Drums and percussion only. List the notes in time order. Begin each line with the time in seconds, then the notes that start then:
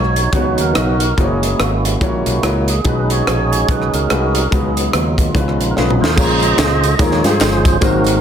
0.16 closed hi-hat
0.33 kick, closed hi-hat
0.58 closed hi-hat
0.75 cross-stick, closed hi-hat
1.00 closed hi-hat
1.18 kick, closed hi-hat
1.43 closed hi-hat
1.60 cross-stick, closed hi-hat
1.85 closed hi-hat
2.01 kick, closed hi-hat
2.26 closed hi-hat
2.43 cross-stick, closed hi-hat
2.68 closed hi-hat
2.85 kick, closed hi-hat
3.10 closed hi-hat
3.27 cross-stick, closed hi-hat
3.53 closed hi-hat
3.69 kick, closed hi-hat
3.82 cross-stick
3.94 closed hi-hat
4.10 cross-stick, closed hi-hat
4.35 closed hi-hat
4.52 kick, closed hi-hat
4.77 closed hi-hat
4.93 cross-stick, closed hi-hat
5.18 kick, closed hi-hat
5.35 kick, closed hi-hat
5.48 cross-stick
5.61 closed hi-hat
5.77 snare
5.90 mid tom
6.04 snare
6.18 kick, crash, tambourine
6.40 closed hi-hat, tambourine
6.59 snare, clap, closed hi-hat, tambourine
6.84 closed hi-hat, tambourine
6.99 kick, closed hi-hat, tambourine
7.11 snare
7.24 snare, closed hi-hat, tambourine
7.41 snare, clap, closed hi-hat, tambourine
7.65 kick, closed hi-hat, tambourine
7.81 kick, closed hi-hat, tambourine
8.04 closed hi-hat, tambourine